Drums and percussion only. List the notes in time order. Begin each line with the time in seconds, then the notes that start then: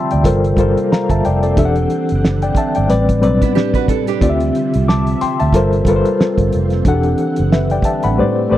0.11 closed hi-hat
0.24 kick, snare, closed hi-hat
0.44 closed hi-hat
0.57 kick, closed hi-hat
0.78 closed hi-hat
0.93 snare
1.10 kick, closed hi-hat
1.25 closed hi-hat
1.43 closed hi-hat
1.57 kick, closed hi-hat
1.76 closed hi-hat
1.90 closed hi-hat
2.09 closed hi-hat
2.25 snare
2.42 closed hi-hat
2.55 kick, closed hi-hat
2.75 closed hi-hat
2.90 snare, closed hi-hat
3.09 kick, closed hi-hat
3.23 closed hi-hat
3.42 kick, closed hi-hat
3.57 snare
3.74 kick, closed hi-hat
3.88 kick, closed hi-hat
4.07 closed hi-hat
4.21 kick, closed hi-hat
4.40 closed hi-hat
4.55 closed hi-hat
4.74 closed hi-hat
4.89 snare
5.07 closed hi-hat
5.21 closed hi-hat
5.40 closed hi-hat
5.53 kick, snare, closed hi-hat
5.73 closed hi-hat
5.85 kick, closed hi-hat
6.05 closed hi-hat
6.21 snare
6.38 kick, closed hi-hat
6.52 closed hi-hat
6.70 snare, closed hi-hat
6.85 kick, closed hi-hat
7.03 closed hi-hat
7.18 closed hi-hat
7.36 closed hi-hat
7.52 snare
7.70 closed hi-hat
7.82 kick, closed hi-hat
8.03 closed hi-hat